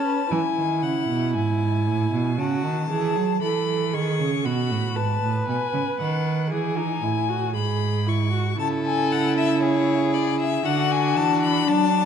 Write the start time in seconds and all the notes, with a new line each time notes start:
Already playing: C#4 A5
0.05 B4
0.31 E3 E4 G#5
0.57 D#3
0.83 C#3 F#5
1.09 B2
1.35 G#2 G#5
1.86 A2
2.12 B2
2.38 C#3 F#4 A5
2.64 D#3
2.90 E3 G#4
3.16 F#3
3.41 E3 A4 B5
3.93 D#3 G#4 C#6
4.19 C#3
4.45 B2 F#4 B5
4.70 A2
4.96 G#2 B4 A5
5.22 A2
5.48 B2 G#5
5.74 C#3
6.00 D#3 F#5
6.51 E3 G#4 G#5
6.77 D#4
7.03 A2 E4
7.29 F#4
7.55 G#2 G#4 B5
8.06 E4 C#6
8.32 F#4
8.58 C#3 E4 A4 A5
8.86 G#5
9.12 F#5
9.37 E5
9.62 G#4 C#5
10.14 D5
10.40 E5
10.65 D3 D4 F#4 F#5
10.91 G#5
11.16 E3 A5
11.42 B5
11.67 F#3 D4 A5